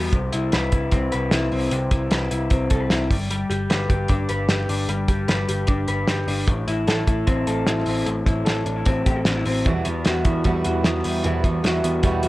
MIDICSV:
0, 0, Header, 1, 5, 480
1, 0, Start_track
1, 0, Tempo, 396825
1, 160, Time_signature, 4, 2, 24, 8
1, 14858, End_track
2, 0, Start_track
2, 0, Title_t, "Clean electric guitar"
2, 0, Program_c, 0, 27
2, 0, Note_on_c, 0, 52, 78
2, 0, Note_on_c, 0, 55, 52
2, 0, Note_on_c, 0, 59, 49
2, 0, Note_on_c, 0, 66, 61
2, 159, Note_on_c, 0, 48, 76
2, 208, Note_off_c, 0, 66, 0
2, 210, Note_off_c, 0, 59, 0
2, 394, Note_on_c, 0, 64, 62
2, 644, Note_on_c, 0, 71, 70
2, 873, Note_off_c, 0, 64, 0
2, 887, Note_on_c, 0, 64, 52
2, 1121, Note_on_c, 0, 60, 62
2, 1353, Note_off_c, 0, 71, 0
2, 1358, Note_on_c, 0, 71, 59
2, 1587, Note_off_c, 0, 64, 0
2, 1602, Note_on_c, 0, 64, 58
2, 1828, Note_off_c, 0, 60, 0
2, 1843, Note_on_c, 0, 60, 57
2, 2070, Note_off_c, 0, 48, 0
2, 2085, Note_on_c, 0, 48, 84
2, 2302, Note_off_c, 0, 64, 0
2, 2317, Note_on_c, 0, 64, 61
2, 2474, Note_off_c, 0, 52, 0
2, 2553, Note_off_c, 0, 71, 0
2, 2558, Note_on_c, 0, 71, 62
2, 2782, Note_off_c, 0, 64, 0
2, 2797, Note_on_c, 0, 64, 56
2, 3027, Note_off_c, 0, 60, 0
2, 3041, Note_on_c, 0, 60, 56
2, 3270, Note_off_c, 0, 71, 0
2, 3275, Note_on_c, 0, 69, 63
2, 3311, Note_off_c, 0, 55, 0
2, 3397, Note_off_c, 0, 69, 0
2, 3397, Note_on_c, 0, 71, 48
2, 3499, Note_off_c, 0, 64, 0
2, 3514, Note_on_c, 0, 64, 58
2, 3756, Note_on_c, 0, 55, 62
2, 3804, Note_off_c, 0, 64, 0
2, 3805, Note_off_c, 0, 71, 0
2, 3808, Note_off_c, 0, 60, 0
2, 3809, Note_off_c, 0, 48, 0
2, 3996, Note_off_c, 0, 55, 0
2, 4001, Note_on_c, 0, 55, 77
2, 4230, Note_on_c, 0, 67, 66
2, 4477, Note_on_c, 0, 71, 59
2, 4710, Note_off_c, 0, 67, 0
2, 4715, Note_on_c, 0, 67, 52
2, 4951, Note_on_c, 0, 62, 65
2, 5180, Note_off_c, 0, 71, 0
2, 5194, Note_on_c, 0, 71, 54
2, 5434, Note_off_c, 0, 67, 0
2, 5439, Note_on_c, 0, 67, 53
2, 5661, Note_off_c, 0, 62, 0
2, 5676, Note_on_c, 0, 62, 50
2, 5910, Note_off_c, 0, 55, 0
2, 5915, Note_on_c, 0, 55, 76
2, 6143, Note_off_c, 0, 67, 0
2, 6148, Note_on_c, 0, 67, 61
2, 6372, Note_off_c, 0, 71, 0
2, 6387, Note_on_c, 0, 71, 61
2, 6626, Note_off_c, 0, 67, 0
2, 6631, Note_on_c, 0, 67, 58
2, 6852, Note_off_c, 0, 62, 0
2, 6866, Note_on_c, 0, 62, 61
2, 7096, Note_off_c, 0, 71, 0
2, 7111, Note_on_c, 0, 71, 64
2, 7346, Note_off_c, 0, 67, 0
2, 7350, Note_on_c, 0, 67, 60
2, 7577, Note_off_c, 0, 62, 0
2, 7591, Note_on_c, 0, 62, 54
2, 7832, Note_on_c, 0, 45, 73
2, 7868, Note_off_c, 0, 55, 0
2, 7882, Note_off_c, 0, 62, 0
2, 7882, Note_off_c, 0, 71, 0
2, 8070, Note_off_c, 0, 67, 0
2, 8075, Note_on_c, 0, 64, 63
2, 8318, Note_on_c, 0, 69, 61
2, 8549, Note_off_c, 0, 64, 0
2, 8553, Note_on_c, 0, 64, 53
2, 8791, Note_on_c, 0, 60, 61
2, 9026, Note_off_c, 0, 69, 0
2, 9040, Note_on_c, 0, 69, 58
2, 9274, Note_off_c, 0, 64, 0
2, 9279, Note_on_c, 0, 64, 58
2, 9503, Note_off_c, 0, 60, 0
2, 9517, Note_on_c, 0, 60, 51
2, 9734, Note_off_c, 0, 45, 0
2, 9749, Note_on_c, 0, 45, 80
2, 9986, Note_off_c, 0, 64, 0
2, 9991, Note_on_c, 0, 64, 65
2, 10206, Note_off_c, 0, 69, 0
2, 10221, Note_on_c, 0, 69, 60
2, 10466, Note_off_c, 0, 64, 0
2, 10471, Note_on_c, 0, 62, 51
2, 10595, Note_off_c, 0, 62, 0
2, 10595, Note_on_c, 0, 64, 49
2, 10702, Note_off_c, 0, 60, 0
2, 10716, Note_on_c, 0, 60, 59
2, 10949, Note_off_c, 0, 69, 0
2, 10963, Note_on_c, 0, 67, 59
2, 11081, Note_off_c, 0, 67, 0
2, 11081, Note_on_c, 0, 69, 49
2, 11195, Note_off_c, 0, 64, 0
2, 11206, Note_on_c, 0, 62, 53
2, 11321, Note_off_c, 0, 62, 0
2, 11321, Note_on_c, 0, 64, 49
2, 11429, Note_off_c, 0, 60, 0
2, 11444, Note_on_c, 0, 60, 58
2, 11672, Note_off_c, 0, 45, 0
2, 11679, Note_on_c, 0, 52, 73
2, 11726, Note_off_c, 0, 64, 0
2, 11726, Note_off_c, 0, 69, 0
2, 11728, Note_off_c, 0, 60, 0
2, 11915, Note_on_c, 0, 59, 57
2, 12162, Note_on_c, 0, 66, 62
2, 12402, Note_off_c, 0, 59, 0
2, 12407, Note_on_c, 0, 59, 50
2, 12640, Note_on_c, 0, 55, 55
2, 12867, Note_off_c, 0, 66, 0
2, 12881, Note_on_c, 0, 66, 53
2, 13124, Note_off_c, 0, 59, 0
2, 13129, Note_on_c, 0, 59, 60
2, 13362, Note_off_c, 0, 55, 0
2, 13366, Note_on_c, 0, 55, 52
2, 13587, Note_off_c, 0, 52, 0
2, 13592, Note_on_c, 0, 52, 77
2, 13835, Note_off_c, 0, 59, 0
2, 13840, Note_on_c, 0, 59, 58
2, 14061, Note_off_c, 0, 66, 0
2, 14076, Note_on_c, 0, 66, 64
2, 14309, Note_off_c, 0, 59, 0
2, 14314, Note_on_c, 0, 59, 56
2, 14551, Note_off_c, 0, 55, 0
2, 14556, Note_on_c, 0, 55, 61
2, 14780, Note_off_c, 0, 66, 0
2, 14794, Note_on_c, 0, 66, 63
2, 14858, Note_off_c, 0, 52, 0
2, 14858, Note_off_c, 0, 55, 0
2, 14858, Note_off_c, 0, 59, 0
2, 14858, Note_off_c, 0, 66, 0
2, 14858, End_track
3, 0, Start_track
3, 0, Title_t, "Steel-string acoustic guitar"
3, 0, Program_c, 1, 25
3, 11670, Note_on_c, 1, 40, 63
3, 11683, Note_on_c, 1, 47, 86
3, 11689, Note_on_c, 1, 55, 86
3, 11691, Note_on_c, 1, 52, 72
3, 11698, Note_on_c, 1, 66, 88
3, 11700, Note_on_c, 1, 64, 79
3, 11884, Note_off_c, 1, 66, 0
3, 11898, Note_on_c, 1, 66, 49
3, 11900, Note_off_c, 1, 64, 0
3, 11913, Note_off_c, 1, 40, 0
3, 11913, Note_off_c, 1, 55, 0
3, 11914, Note_on_c, 1, 64, 49
3, 11920, Note_off_c, 1, 47, 0
3, 11924, Note_off_c, 1, 52, 0
3, 11927, Note_on_c, 1, 55, 47
3, 11938, Note_on_c, 1, 52, 45
3, 12126, Note_off_c, 1, 52, 0
3, 12140, Note_on_c, 1, 52, 51
3, 12147, Note_off_c, 1, 66, 0
3, 12152, Note_off_c, 1, 55, 0
3, 12155, Note_off_c, 1, 64, 0
3, 12167, Note_on_c, 1, 55, 59
3, 12174, Note_on_c, 1, 64, 65
3, 12190, Note_on_c, 1, 66, 68
3, 12372, Note_off_c, 1, 66, 0
3, 12384, Note_off_c, 1, 64, 0
3, 12386, Note_on_c, 1, 66, 56
3, 12388, Note_off_c, 1, 52, 0
3, 12396, Note_off_c, 1, 55, 0
3, 12398, Note_on_c, 1, 64, 51
3, 12410, Note_on_c, 1, 55, 46
3, 12427, Note_on_c, 1, 52, 39
3, 12630, Note_off_c, 1, 55, 0
3, 12630, Note_on_c, 1, 40, 82
3, 12631, Note_off_c, 1, 66, 0
3, 12635, Note_off_c, 1, 52, 0
3, 12637, Note_off_c, 1, 64, 0
3, 12639, Note_on_c, 1, 47, 69
3, 12645, Note_on_c, 1, 55, 75
3, 12650, Note_on_c, 1, 52, 85
3, 12654, Note_on_c, 1, 64, 90
3, 12658, Note_on_c, 1, 66, 91
3, 13092, Note_off_c, 1, 52, 0
3, 13097, Note_on_c, 1, 52, 60
3, 13101, Note_off_c, 1, 55, 0
3, 13106, Note_on_c, 1, 55, 53
3, 13113, Note_off_c, 1, 40, 0
3, 13118, Note_off_c, 1, 47, 0
3, 13118, Note_off_c, 1, 64, 0
3, 13123, Note_on_c, 1, 64, 64
3, 13127, Note_off_c, 1, 66, 0
3, 13142, Note_on_c, 1, 66, 66
3, 13601, Note_on_c, 1, 40, 74
3, 13604, Note_off_c, 1, 52, 0
3, 13609, Note_off_c, 1, 66, 0
3, 13609, Note_on_c, 1, 47, 81
3, 13609, Note_on_c, 1, 52, 75
3, 13614, Note_off_c, 1, 55, 0
3, 13617, Note_off_c, 1, 64, 0
3, 13619, Note_on_c, 1, 55, 79
3, 13622, Note_on_c, 1, 64, 81
3, 13631, Note_on_c, 1, 66, 88
3, 13823, Note_off_c, 1, 66, 0
3, 13837, Note_on_c, 1, 66, 53
3, 13839, Note_off_c, 1, 40, 0
3, 13843, Note_off_c, 1, 47, 0
3, 13843, Note_off_c, 1, 52, 0
3, 13843, Note_off_c, 1, 64, 0
3, 13848, Note_off_c, 1, 55, 0
3, 13857, Note_on_c, 1, 64, 51
3, 13869, Note_on_c, 1, 55, 50
3, 13877, Note_on_c, 1, 52, 47
3, 14048, Note_off_c, 1, 52, 0
3, 14063, Note_on_c, 1, 52, 59
3, 14066, Note_off_c, 1, 55, 0
3, 14077, Note_off_c, 1, 66, 0
3, 14081, Note_on_c, 1, 55, 51
3, 14083, Note_off_c, 1, 64, 0
3, 14098, Note_on_c, 1, 64, 65
3, 14103, Note_on_c, 1, 66, 63
3, 14292, Note_off_c, 1, 66, 0
3, 14306, Note_on_c, 1, 66, 48
3, 14307, Note_off_c, 1, 64, 0
3, 14310, Note_off_c, 1, 52, 0
3, 14319, Note_off_c, 1, 55, 0
3, 14321, Note_on_c, 1, 64, 46
3, 14334, Note_on_c, 1, 55, 43
3, 14341, Note_on_c, 1, 52, 45
3, 14543, Note_on_c, 1, 40, 80
3, 14546, Note_off_c, 1, 52, 0
3, 14549, Note_off_c, 1, 55, 0
3, 14552, Note_off_c, 1, 64, 0
3, 14552, Note_off_c, 1, 66, 0
3, 14559, Note_on_c, 1, 47, 78
3, 14560, Note_on_c, 1, 52, 73
3, 14564, Note_on_c, 1, 55, 88
3, 14566, Note_on_c, 1, 64, 82
3, 14578, Note_on_c, 1, 66, 83
3, 14858, Note_off_c, 1, 40, 0
3, 14858, Note_off_c, 1, 47, 0
3, 14858, Note_off_c, 1, 52, 0
3, 14858, Note_off_c, 1, 55, 0
3, 14858, Note_off_c, 1, 64, 0
3, 14858, Note_off_c, 1, 66, 0
3, 14858, End_track
4, 0, Start_track
4, 0, Title_t, "Picked electric bass"
4, 0, Program_c, 2, 34
4, 158, Note_on_c, 2, 36, 88
4, 355, Note_off_c, 2, 36, 0
4, 410, Note_on_c, 2, 36, 94
4, 602, Note_off_c, 2, 36, 0
4, 652, Note_on_c, 2, 36, 99
4, 843, Note_off_c, 2, 36, 0
4, 879, Note_on_c, 2, 36, 89
4, 1076, Note_off_c, 2, 36, 0
4, 1116, Note_on_c, 2, 36, 90
4, 1314, Note_off_c, 2, 36, 0
4, 1382, Note_on_c, 2, 36, 85
4, 1569, Note_off_c, 2, 36, 0
4, 1606, Note_on_c, 2, 36, 93
4, 1800, Note_off_c, 2, 36, 0
4, 1843, Note_on_c, 2, 36, 86
4, 2038, Note_off_c, 2, 36, 0
4, 2076, Note_on_c, 2, 36, 96
4, 2274, Note_off_c, 2, 36, 0
4, 2317, Note_on_c, 2, 36, 91
4, 2514, Note_off_c, 2, 36, 0
4, 2556, Note_on_c, 2, 36, 94
4, 2754, Note_off_c, 2, 36, 0
4, 2802, Note_on_c, 2, 36, 82
4, 2997, Note_off_c, 2, 36, 0
4, 3043, Note_on_c, 2, 36, 101
4, 3238, Note_off_c, 2, 36, 0
4, 3284, Note_on_c, 2, 36, 86
4, 3478, Note_off_c, 2, 36, 0
4, 3526, Note_on_c, 2, 36, 90
4, 3719, Note_off_c, 2, 36, 0
4, 3761, Note_on_c, 2, 31, 91
4, 4153, Note_off_c, 2, 31, 0
4, 4237, Note_on_c, 2, 31, 87
4, 4434, Note_off_c, 2, 31, 0
4, 4476, Note_on_c, 2, 31, 83
4, 4674, Note_off_c, 2, 31, 0
4, 4720, Note_on_c, 2, 31, 91
4, 4916, Note_off_c, 2, 31, 0
4, 4956, Note_on_c, 2, 31, 107
4, 5154, Note_off_c, 2, 31, 0
4, 5202, Note_on_c, 2, 31, 85
4, 5397, Note_off_c, 2, 31, 0
4, 5435, Note_on_c, 2, 31, 97
4, 5633, Note_off_c, 2, 31, 0
4, 5671, Note_on_c, 2, 31, 91
4, 5871, Note_off_c, 2, 31, 0
4, 5912, Note_on_c, 2, 31, 92
4, 6111, Note_off_c, 2, 31, 0
4, 6158, Note_on_c, 2, 31, 88
4, 6355, Note_off_c, 2, 31, 0
4, 6391, Note_on_c, 2, 31, 94
4, 6590, Note_off_c, 2, 31, 0
4, 6639, Note_on_c, 2, 31, 79
4, 6835, Note_off_c, 2, 31, 0
4, 6872, Note_on_c, 2, 31, 92
4, 7071, Note_off_c, 2, 31, 0
4, 7114, Note_on_c, 2, 31, 91
4, 7312, Note_off_c, 2, 31, 0
4, 7349, Note_on_c, 2, 31, 88
4, 7549, Note_off_c, 2, 31, 0
4, 7589, Note_on_c, 2, 31, 90
4, 7789, Note_off_c, 2, 31, 0
4, 7842, Note_on_c, 2, 33, 95
4, 8037, Note_off_c, 2, 33, 0
4, 8081, Note_on_c, 2, 33, 83
4, 8276, Note_off_c, 2, 33, 0
4, 8316, Note_on_c, 2, 33, 97
4, 8513, Note_off_c, 2, 33, 0
4, 8557, Note_on_c, 2, 33, 91
4, 8754, Note_off_c, 2, 33, 0
4, 8803, Note_on_c, 2, 33, 94
4, 8997, Note_off_c, 2, 33, 0
4, 9043, Note_on_c, 2, 33, 80
4, 9237, Note_off_c, 2, 33, 0
4, 9277, Note_on_c, 2, 33, 97
4, 9474, Note_off_c, 2, 33, 0
4, 9516, Note_on_c, 2, 33, 103
4, 9713, Note_off_c, 2, 33, 0
4, 9755, Note_on_c, 2, 33, 82
4, 9952, Note_off_c, 2, 33, 0
4, 10005, Note_on_c, 2, 33, 89
4, 10198, Note_off_c, 2, 33, 0
4, 10238, Note_on_c, 2, 33, 87
4, 10434, Note_off_c, 2, 33, 0
4, 10475, Note_on_c, 2, 33, 89
4, 10672, Note_off_c, 2, 33, 0
4, 10727, Note_on_c, 2, 33, 93
4, 10919, Note_off_c, 2, 33, 0
4, 10966, Note_on_c, 2, 33, 84
4, 11159, Note_off_c, 2, 33, 0
4, 11209, Note_on_c, 2, 33, 90
4, 11400, Note_off_c, 2, 33, 0
4, 11438, Note_on_c, 2, 33, 99
4, 11634, Note_off_c, 2, 33, 0
4, 11681, Note_on_c, 2, 40, 73
4, 11876, Note_off_c, 2, 40, 0
4, 11929, Note_on_c, 2, 40, 94
4, 12121, Note_off_c, 2, 40, 0
4, 12172, Note_on_c, 2, 40, 98
4, 12362, Note_off_c, 2, 40, 0
4, 12400, Note_on_c, 2, 40, 85
4, 12595, Note_off_c, 2, 40, 0
4, 12644, Note_on_c, 2, 40, 91
4, 12838, Note_off_c, 2, 40, 0
4, 12889, Note_on_c, 2, 40, 93
4, 13081, Note_off_c, 2, 40, 0
4, 13122, Note_on_c, 2, 40, 93
4, 13317, Note_off_c, 2, 40, 0
4, 13368, Note_on_c, 2, 40, 97
4, 13560, Note_off_c, 2, 40, 0
4, 13603, Note_on_c, 2, 40, 96
4, 13797, Note_off_c, 2, 40, 0
4, 13842, Note_on_c, 2, 40, 92
4, 14037, Note_off_c, 2, 40, 0
4, 14079, Note_on_c, 2, 40, 87
4, 14275, Note_off_c, 2, 40, 0
4, 14321, Note_on_c, 2, 40, 84
4, 14516, Note_off_c, 2, 40, 0
4, 14559, Note_on_c, 2, 40, 97
4, 14755, Note_off_c, 2, 40, 0
4, 14796, Note_on_c, 2, 40, 95
4, 14858, Note_off_c, 2, 40, 0
4, 14858, End_track
5, 0, Start_track
5, 0, Title_t, "Drums"
5, 155, Note_on_c, 9, 42, 82
5, 156, Note_on_c, 9, 36, 94
5, 276, Note_off_c, 9, 42, 0
5, 277, Note_off_c, 9, 36, 0
5, 393, Note_on_c, 9, 42, 79
5, 514, Note_off_c, 9, 42, 0
5, 629, Note_on_c, 9, 42, 72
5, 641, Note_on_c, 9, 38, 98
5, 750, Note_off_c, 9, 42, 0
5, 762, Note_off_c, 9, 38, 0
5, 869, Note_on_c, 9, 42, 62
5, 877, Note_on_c, 9, 36, 73
5, 990, Note_off_c, 9, 42, 0
5, 998, Note_off_c, 9, 36, 0
5, 1108, Note_on_c, 9, 42, 76
5, 1117, Note_on_c, 9, 36, 74
5, 1229, Note_off_c, 9, 42, 0
5, 1238, Note_off_c, 9, 36, 0
5, 1355, Note_on_c, 9, 42, 56
5, 1476, Note_off_c, 9, 42, 0
5, 1589, Note_on_c, 9, 38, 108
5, 1595, Note_on_c, 9, 42, 84
5, 1710, Note_off_c, 9, 38, 0
5, 1716, Note_off_c, 9, 42, 0
5, 1834, Note_on_c, 9, 46, 71
5, 1955, Note_off_c, 9, 46, 0
5, 2072, Note_on_c, 9, 42, 81
5, 2193, Note_off_c, 9, 42, 0
5, 2311, Note_on_c, 9, 42, 81
5, 2315, Note_on_c, 9, 36, 79
5, 2432, Note_off_c, 9, 42, 0
5, 2436, Note_off_c, 9, 36, 0
5, 2549, Note_on_c, 9, 42, 69
5, 2561, Note_on_c, 9, 38, 109
5, 2670, Note_off_c, 9, 42, 0
5, 2682, Note_off_c, 9, 38, 0
5, 2797, Note_on_c, 9, 42, 65
5, 2918, Note_off_c, 9, 42, 0
5, 3030, Note_on_c, 9, 42, 72
5, 3039, Note_on_c, 9, 36, 79
5, 3151, Note_off_c, 9, 42, 0
5, 3160, Note_off_c, 9, 36, 0
5, 3270, Note_on_c, 9, 42, 65
5, 3280, Note_on_c, 9, 36, 83
5, 3391, Note_off_c, 9, 42, 0
5, 3401, Note_off_c, 9, 36, 0
5, 3512, Note_on_c, 9, 38, 115
5, 3518, Note_on_c, 9, 42, 85
5, 3633, Note_off_c, 9, 38, 0
5, 3639, Note_off_c, 9, 42, 0
5, 3760, Note_on_c, 9, 36, 88
5, 3762, Note_on_c, 9, 46, 68
5, 3881, Note_off_c, 9, 36, 0
5, 3883, Note_off_c, 9, 46, 0
5, 4001, Note_on_c, 9, 42, 90
5, 4122, Note_off_c, 9, 42, 0
5, 4241, Note_on_c, 9, 42, 72
5, 4362, Note_off_c, 9, 42, 0
5, 4475, Note_on_c, 9, 42, 62
5, 4487, Note_on_c, 9, 38, 102
5, 4596, Note_off_c, 9, 42, 0
5, 4608, Note_off_c, 9, 38, 0
5, 4715, Note_on_c, 9, 42, 62
5, 4716, Note_on_c, 9, 36, 87
5, 4836, Note_off_c, 9, 42, 0
5, 4837, Note_off_c, 9, 36, 0
5, 4940, Note_on_c, 9, 42, 75
5, 4955, Note_on_c, 9, 36, 74
5, 5061, Note_off_c, 9, 42, 0
5, 5075, Note_off_c, 9, 36, 0
5, 5186, Note_on_c, 9, 42, 61
5, 5307, Note_off_c, 9, 42, 0
5, 5427, Note_on_c, 9, 38, 115
5, 5433, Note_on_c, 9, 42, 83
5, 5548, Note_off_c, 9, 38, 0
5, 5554, Note_off_c, 9, 42, 0
5, 5672, Note_on_c, 9, 46, 68
5, 5793, Note_off_c, 9, 46, 0
5, 5912, Note_on_c, 9, 42, 78
5, 6033, Note_off_c, 9, 42, 0
5, 6148, Note_on_c, 9, 42, 69
5, 6151, Note_on_c, 9, 36, 76
5, 6269, Note_off_c, 9, 42, 0
5, 6272, Note_off_c, 9, 36, 0
5, 6389, Note_on_c, 9, 42, 72
5, 6401, Note_on_c, 9, 38, 101
5, 6510, Note_off_c, 9, 42, 0
5, 6522, Note_off_c, 9, 38, 0
5, 6635, Note_on_c, 9, 42, 69
5, 6756, Note_off_c, 9, 42, 0
5, 6857, Note_on_c, 9, 42, 66
5, 6874, Note_on_c, 9, 36, 82
5, 6978, Note_off_c, 9, 42, 0
5, 6995, Note_off_c, 9, 36, 0
5, 7107, Note_on_c, 9, 42, 63
5, 7227, Note_off_c, 9, 42, 0
5, 7347, Note_on_c, 9, 38, 120
5, 7353, Note_on_c, 9, 42, 81
5, 7468, Note_off_c, 9, 38, 0
5, 7474, Note_off_c, 9, 42, 0
5, 7593, Note_on_c, 9, 46, 73
5, 7714, Note_off_c, 9, 46, 0
5, 7835, Note_on_c, 9, 36, 96
5, 7836, Note_on_c, 9, 42, 82
5, 7956, Note_off_c, 9, 36, 0
5, 7957, Note_off_c, 9, 42, 0
5, 8078, Note_on_c, 9, 42, 81
5, 8199, Note_off_c, 9, 42, 0
5, 8316, Note_on_c, 9, 42, 64
5, 8328, Note_on_c, 9, 38, 105
5, 8437, Note_off_c, 9, 42, 0
5, 8449, Note_off_c, 9, 38, 0
5, 8557, Note_on_c, 9, 42, 66
5, 8559, Note_on_c, 9, 36, 85
5, 8678, Note_off_c, 9, 42, 0
5, 8680, Note_off_c, 9, 36, 0
5, 8796, Note_on_c, 9, 42, 75
5, 8802, Note_on_c, 9, 36, 79
5, 8917, Note_off_c, 9, 42, 0
5, 8923, Note_off_c, 9, 36, 0
5, 9037, Note_on_c, 9, 42, 64
5, 9158, Note_off_c, 9, 42, 0
5, 9274, Note_on_c, 9, 38, 114
5, 9280, Note_on_c, 9, 42, 83
5, 9395, Note_off_c, 9, 38, 0
5, 9401, Note_off_c, 9, 42, 0
5, 9507, Note_on_c, 9, 46, 75
5, 9628, Note_off_c, 9, 46, 0
5, 9756, Note_on_c, 9, 42, 76
5, 9877, Note_off_c, 9, 42, 0
5, 9997, Note_on_c, 9, 36, 77
5, 10000, Note_on_c, 9, 42, 73
5, 10117, Note_off_c, 9, 36, 0
5, 10120, Note_off_c, 9, 42, 0
5, 10234, Note_on_c, 9, 42, 68
5, 10246, Note_on_c, 9, 38, 99
5, 10355, Note_off_c, 9, 42, 0
5, 10367, Note_off_c, 9, 38, 0
5, 10473, Note_on_c, 9, 42, 65
5, 10594, Note_off_c, 9, 42, 0
5, 10710, Note_on_c, 9, 42, 72
5, 10721, Note_on_c, 9, 36, 78
5, 10831, Note_off_c, 9, 42, 0
5, 10842, Note_off_c, 9, 36, 0
5, 10960, Note_on_c, 9, 42, 67
5, 10964, Note_on_c, 9, 36, 83
5, 11081, Note_off_c, 9, 42, 0
5, 11085, Note_off_c, 9, 36, 0
5, 11189, Note_on_c, 9, 38, 113
5, 11195, Note_on_c, 9, 42, 77
5, 11310, Note_off_c, 9, 38, 0
5, 11316, Note_off_c, 9, 42, 0
5, 11433, Note_on_c, 9, 46, 73
5, 11554, Note_off_c, 9, 46, 0
5, 11680, Note_on_c, 9, 42, 79
5, 11681, Note_on_c, 9, 36, 92
5, 11801, Note_off_c, 9, 42, 0
5, 11802, Note_off_c, 9, 36, 0
5, 11912, Note_on_c, 9, 42, 80
5, 12033, Note_off_c, 9, 42, 0
5, 12152, Note_on_c, 9, 42, 74
5, 12164, Note_on_c, 9, 38, 88
5, 12273, Note_off_c, 9, 42, 0
5, 12285, Note_off_c, 9, 38, 0
5, 12395, Note_on_c, 9, 42, 68
5, 12400, Note_on_c, 9, 36, 91
5, 12516, Note_off_c, 9, 42, 0
5, 12521, Note_off_c, 9, 36, 0
5, 12630, Note_on_c, 9, 42, 70
5, 12641, Note_on_c, 9, 36, 80
5, 12751, Note_off_c, 9, 42, 0
5, 12762, Note_off_c, 9, 36, 0
5, 12874, Note_on_c, 9, 42, 61
5, 12995, Note_off_c, 9, 42, 0
5, 13116, Note_on_c, 9, 38, 113
5, 13122, Note_on_c, 9, 42, 77
5, 13237, Note_off_c, 9, 38, 0
5, 13243, Note_off_c, 9, 42, 0
5, 13355, Note_on_c, 9, 46, 70
5, 13476, Note_off_c, 9, 46, 0
5, 13597, Note_on_c, 9, 42, 79
5, 13718, Note_off_c, 9, 42, 0
5, 13837, Note_on_c, 9, 36, 76
5, 13838, Note_on_c, 9, 42, 74
5, 13958, Note_off_c, 9, 36, 0
5, 13959, Note_off_c, 9, 42, 0
5, 14079, Note_on_c, 9, 42, 68
5, 14091, Note_on_c, 9, 38, 94
5, 14200, Note_off_c, 9, 42, 0
5, 14212, Note_off_c, 9, 38, 0
5, 14322, Note_on_c, 9, 42, 69
5, 14443, Note_off_c, 9, 42, 0
5, 14551, Note_on_c, 9, 42, 79
5, 14558, Note_on_c, 9, 36, 72
5, 14672, Note_off_c, 9, 42, 0
5, 14679, Note_off_c, 9, 36, 0
5, 14791, Note_on_c, 9, 42, 59
5, 14858, Note_off_c, 9, 42, 0
5, 14858, End_track
0, 0, End_of_file